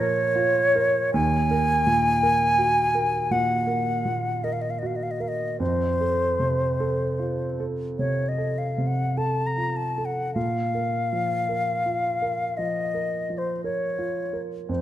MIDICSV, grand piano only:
0, 0, Header, 1, 2, 480
1, 0, Start_track
1, 0, Key_signature, -5, "minor"
1, 0, Tempo, 1158301
1, 473, Time_signature, 4, 2, 24, 8
1, 473, Tempo, 1096892
1, 1913, Tempo, 1183432
1, 4313, Tempo, 1134216
1, 4793, Tempo, 1079137
1, 5753, Tempo, 1039861
1, 6294, End_track
2, 0, Start_track
2, 0, Title_t, "Grand piano"
2, 0, Program_c, 0, 0
2, 0, Control_c, 0, 64, 127
2, 0, Note_on_c, 0, 46, 73
2, 0, Note_on_c, 0, 53, 55
2, 0, Note_on_c, 0, 70, 53
2, 87, Note_off_c, 0, 53, 0
2, 148, Note_on_c, 0, 65, 53
2, 247, Note_off_c, 0, 70, 0
2, 313, Note_on_c, 0, 70, 53
2, 410, Note_off_c, 0, 65, 0
2, 458, Note_off_c, 0, 46, 0
2, 471, Note_on_c, 0, 39, 70
2, 473, Note_off_c, 0, 70, 0
2, 481, Control_c, 0, 64, 0
2, 557, Control_c, 0, 64, 127
2, 634, Note_on_c, 0, 70, 54
2, 791, Note_on_c, 0, 46, 46
2, 887, Note_off_c, 0, 70, 0
2, 950, Note_on_c, 0, 70, 51
2, 1045, Note_off_c, 0, 46, 0
2, 1102, Note_on_c, 0, 66, 48
2, 1204, Note_off_c, 0, 70, 0
2, 1264, Note_on_c, 0, 70, 50
2, 1358, Note_off_c, 0, 66, 0
2, 1405, Note_off_c, 0, 39, 0
2, 1422, Note_on_c, 0, 46, 51
2, 1517, Note_off_c, 0, 70, 0
2, 1580, Note_on_c, 0, 70, 46
2, 1680, Note_off_c, 0, 46, 0
2, 1747, Note_on_c, 0, 46, 42
2, 1846, Note_off_c, 0, 70, 0
2, 1916, Note_on_c, 0, 70, 48
2, 2009, Note_off_c, 0, 46, 0
2, 2073, Note_on_c, 0, 66, 45
2, 2166, Note_off_c, 0, 70, 0
2, 2225, Note_on_c, 0, 70, 44
2, 2324, Note_off_c, 0, 66, 0
2, 2385, Note_off_c, 0, 70, 0
2, 2386, Note_on_c, 0, 41, 54
2, 2394, Control_c, 0, 64, 0
2, 2464, Control_c, 0, 64, 127
2, 2552, Note_on_c, 0, 69, 41
2, 2709, Note_on_c, 0, 48, 39
2, 2810, Note_off_c, 0, 69, 0
2, 2874, Note_on_c, 0, 69, 44
2, 2970, Note_off_c, 0, 48, 0
2, 3034, Note_on_c, 0, 65, 37
2, 3132, Note_off_c, 0, 69, 0
2, 3197, Note_on_c, 0, 69, 40
2, 3290, Note_off_c, 0, 65, 0
2, 3338, Note_off_c, 0, 41, 0
2, 3356, Note_on_c, 0, 48, 40
2, 3452, Note_off_c, 0, 69, 0
2, 3516, Note_on_c, 0, 69, 38
2, 3612, Note_off_c, 0, 48, 0
2, 3677, Note_on_c, 0, 48, 36
2, 3772, Note_off_c, 0, 69, 0
2, 3837, Note_on_c, 0, 69, 41
2, 3934, Note_off_c, 0, 48, 0
2, 4000, Note_on_c, 0, 65, 35
2, 4095, Note_off_c, 0, 69, 0
2, 4163, Note_on_c, 0, 69, 37
2, 4255, Note_off_c, 0, 65, 0
2, 4316, Note_on_c, 0, 46, 52
2, 4319, Note_off_c, 0, 69, 0
2, 4323, Control_c, 0, 64, 0
2, 4396, Control_c, 0, 64, 127
2, 4481, Note_on_c, 0, 70, 42
2, 4641, Note_on_c, 0, 53, 37
2, 4735, Note_off_c, 0, 70, 0
2, 4796, Note_on_c, 0, 70, 40
2, 4896, Note_off_c, 0, 53, 0
2, 4960, Note_on_c, 0, 65, 40
2, 5057, Note_off_c, 0, 70, 0
2, 5121, Note_on_c, 0, 70, 40
2, 5218, Note_off_c, 0, 65, 0
2, 5263, Note_off_c, 0, 46, 0
2, 5283, Note_on_c, 0, 53, 37
2, 5378, Note_off_c, 0, 70, 0
2, 5443, Note_on_c, 0, 70, 40
2, 5538, Note_off_c, 0, 53, 0
2, 5600, Note_on_c, 0, 53, 35
2, 5696, Note_off_c, 0, 70, 0
2, 5754, Note_on_c, 0, 70, 38
2, 5854, Note_off_c, 0, 53, 0
2, 5912, Note_on_c, 0, 65, 37
2, 6012, Note_off_c, 0, 70, 0
2, 6072, Note_on_c, 0, 70, 38
2, 6170, Note_off_c, 0, 65, 0
2, 6235, Note_off_c, 0, 70, 0
2, 6237, Note_on_c, 0, 41, 49
2, 6245, Control_c, 0, 64, 0
2, 6294, Note_off_c, 0, 41, 0
2, 6294, End_track
0, 0, End_of_file